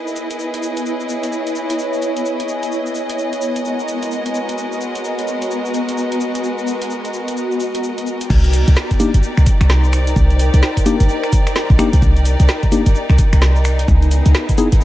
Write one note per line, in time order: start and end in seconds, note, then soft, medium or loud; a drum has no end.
0.00 8.30 B3 medium
0.00 3.61 E4 medium
0.00 3.65 E4 medium
0.00 3.61 G#4 medium
0.00 3.61 B4 medium
0.00 5.47 C#5 medium
0.00 8.26 D#5 medium
0.00 8.30 G#5 medium
0.07 cabasa soft
0.16 closed hi-hat soft
0.16 cabasa medium
0.31 closed hi-hat medium
0.31 cabasa soft
0.40 cabasa soft
0.54 closed hi-hat soft
0.54 cabasa soft
0.63 cabasa medium
0.77 closed hi-hat medium
0.77 cabasa soft
0.86 cabasa soft
1.00 cabasa soft
1.09 cabasa medium
1.24 closed hi-hat medium
1.24 cabasa soft
1.32 cabasa soft
1.47 closed hi-hat soft
1.47 cabasa soft
1.56 cabasa medium
1.70 closed hi-hat medium
1.70 cabasa soft
1.79 cabasa soft
1.93 cabasa soft
2.02 closed hi-hat soft
2.02 cabasa medium
2.17 closed hi-hat medium
2.17 cabasa soft
2.26 cabasa soft
2.40 closed hi-hat soft
2.40 cabasa soft
2.49 cabasa medium
2.63 closed hi-hat medium
2.63 cabasa soft
2.72 cabasa soft
2.86 cabasa soft
2.95 cabasa medium
3.10 closed hi-hat medium
3.10 cabasa soft
3.19 cabasa soft
3.33 closed hi-hat soft
3.33 cabasa soft
3.42 cabasa medium
3.56 closed hi-hat medium
3.56 cabasa soft
3.65 8.26 G#3 medium
3.65 8.30 F#4 medium
3.65 8.26 F#4 medium
3.65 8.26 A#4 medium
3.65 8.26 B4 medium
3.65 cabasa soft
3.79 cabasa soft
3.88 closed hi-hat soft
3.88 cabasa medium
4.03 closed hi-hat medium
4.03 cabasa soft
4.12 cabasa soft
4.26 closed hi-hat soft
4.26 cabasa soft
4.35 cabasa medium
4.49 closed hi-hat medium
4.49 cabasa soft
4.58 cabasa soft
4.72 cabasa soft
4.81 cabasa medium
4.95 closed hi-hat medium
4.95 cabasa soft
5.05 cabasa soft
5.19 closed hi-hat soft
5.19 cabasa soft
5.28 cabasa medium
5.42 closed hi-hat medium
5.42 cabasa soft
5.51 cabasa soft
5.65 cabasa soft
5.74 closed hi-hat soft
5.74 cabasa medium
5.89 closed hi-hat medium
5.89 cabasa soft
5.98 cabasa soft
6.12 closed hi-hat soft
6.12 cabasa soft
6.21 cabasa medium
6.35 closed hi-hat medium
6.35 cabasa soft
6.44 cabasa soft
6.58 cabasa soft
6.67 cabasa medium
6.82 closed hi-hat medium
6.82 cabasa soft
6.91 cabasa soft
7.05 closed hi-hat soft
7.05 cabasa soft
7.14 cabasa medium
7.28 closed hi-hat medium
7.28 cabasa soft
7.37 cabasa soft
7.51 cabasa soft
7.60 closed hi-hat soft
7.60 cabasa medium
7.75 closed hi-hat medium
7.75 cabasa soft
7.84 cabasa soft
7.98 closed hi-hat soft
7.98 cabasa soft
8.07 cabasa medium
8.21 closed hi-hat medium
8.21 cabasa soft
8.30 8.64 C2 medium
8.30 13.88 D#4 medium
8.30 14.84 D#4 medium
8.30 13.84 G4 medium
8.30 13.84 A#4 medium
8.30 13.84 D5 medium
8.30 kick loud
8.30 crash loud
8.30 cabasa soft
8.44 closed hi-hat soft
8.44 cabasa soft
8.53 open hi-hat loud
8.53 cabasa medium
8.67 8.75 C2 medium
8.67 14.84 A#4 medium
8.67 11.46 C5 medium
8.67 closed hi-hat medium
8.67 cabasa soft
8.77 snare loud
8.77 cabasa soft
8.91 kick medium
8.91 closed hi-hat soft
8.91 cabasa soft
9.00 9.09 A#3 medium
9.00 9.09 D4 medium
9.00 9.09 D#4 medium
9.00 9.09 G4 medium
9.00 open hi-hat loud
9.00 cabasa medium
9.10 13.88 G5 medium
9.14 9.22 G1 loud
9.14 closed hi-hat medium
9.14 cabasa soft
9.23 cabasa soft
9.37 9.45 C2 medium
9.37 finger snap soft
9.37 cabasa soft
9.46 kick loud
9.46 open hi-hat loud
9.46 cabasa medium
9.61 10.14 C2 medium
9.61 finger snap medium
9.61 closed hi-hat medium
9.61 cabasa soft
9.70 snare loud
9.70 cabasa soft
9.84 cabasa soft
9.93 finger snap medium
9.93 open hi-hat loud
9.93 cabasa medium
10.07 closed hi-hat medium
10.07 cabasa soft
10.16 10.50 C2 loud
10.16 kick loud
10.16 cabasa soft
10.31 closed hi-hat soft
10.31 cabasa soft
10.39 open hi-hat loud
10.39 cabasa medium
10.54 10.61 C2 medium
10.54 closed hi-hat medium
10.54 cabasa soft
10.63 snare loud
10.63 cabasa soft
10.77 kick medium
10.77 open hi-hat medium
10.77 cabasa soft
10.86 10.95 A#3 medium
10.86 10.95 D4 medium
10.86 10.95 D#4 medium
10.86 10.95 G4 loud
10.86 open hi-hat loud
10.86 cabasa medium
11.00 11.08 G1 loud
11.00 closed hi-hat medium
11.00 cabasa soft
11.09 cabasa soft
11.23 finger snap soft
11.23 cabasa soft
11.30 13.88 D5 medium
11.30 kick loud
11.30 open hi-hat loud
11.30 cabasa medium
11.47 finger snap medium
11.47 closed hi-hat medium
11.47 cabasa soft
11.56 snare loud
11.56 cabasa soft
11.70 11.77 A#1 medium
11.70 kick loud
11.70 cabasa soft
11.79 11.88 A#3 medium
11.79 11.88 D4 medium
11.79 11.88 D#4 medium
11.79 11.88 G4 loud
11.79 finger snap medium
11.79 open hi-hat loud
11.79 cabasa medium
11.93 12.01 C2 loud
11.93 closed hi-hat medium
11.93 cabasa soft
12.02 12.36 C2 loud
12.02 kick loud
12.02 cabasa soft
12.17 closed hi-hat soft
12.17 cabasa soft
12.25 open hi-hat loud
12.25 cabasa medium
12.40 12.47 C2 medium
12.40 closed hi-hat medium
12.40 cabasa soft
12.49 snare loud
12.49 cabasa soft
12.63 kick medium
12.63 closed hi-hat soft
12.63 cabasa soft
12.72 12.81 A#3 medium
12.72 12.81 D4 medium
12.72 12.81 D#4 medium
12.72 12.81 G4 medium
12.72 open hi-hat loud
12.72 cabasa medium
12.86 12.94 G1 loud
12.86 closed hi-hat medium
12.86 cabasa soft
12.95 cabasa soft
13.09 13.17 C2 medium
13.09 finger snap soft
13.09 cabasa soft
13.18 kick loud
13.18 open hi-hat loud
13.18 cabasa medium
13.33 13.86 C2 medium
13.33 finger snap medium
13.33 closed hi-hat medium
13.33 cabasa soft
13.42 snare loud
13.42 cabasa soft
13.56 cabasa soft
13.65 finger snap medium
13.65 open hi-hat loud
13.65 cabasa medium
13.79 closed hi-hat medium
13.79 cabasa soft
13.88 14.22 C#2 loud
13.88 14.84 B3 medium
13.88 14.84 E4 medium
13.88 14.84 G#4 medium
13.88 kick loud
13.88 cabasa soft
14.02 closed hi-hat soft
14.02 cabasa soft
14.11 open hi-hat loud
14.11 cabasa medium
14.18 14.84 E3 medium
14.26 14.33 C#2 medium
14.26 closed hi-hat medium
14.26 cabasa soft
14.35 snare loud
14.35 cabasa soft
14.49 kick medium
14.49 open hi-hat medium
14.49 cabasa soft
14.58 14.67 B3 loud
14.58 14.67 D#4 medium
14.58 14.67 E4 medium
14.58 14.67 G#4 loud
14.58 open hi-hat loud
14.58 cabasa medium
14.71 14.80 G#1 loud
14.71 14.84 C#5 medium
14.71 closed hi-hat medium
14.71 cabasa soft
14.81 cabasa soft